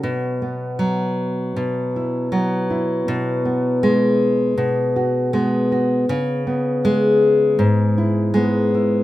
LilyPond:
\new Staff \with { instrumentName = "Nylon-string guitar" } { \clef bass \time 4/4 \key b \mixolydian \tempo 4 = 80 << { r8 b2 e'8 b8 e'8 | r8 b2 fis'8 b8 fis'8 | r8 b2 e'8 b8 e'8 | } \\ { <b, fis>4 fis4 b,4 fis4 | b,4 gis4 b,4 gis4 | cis4 gis4 gis,4 gis4 | } >> }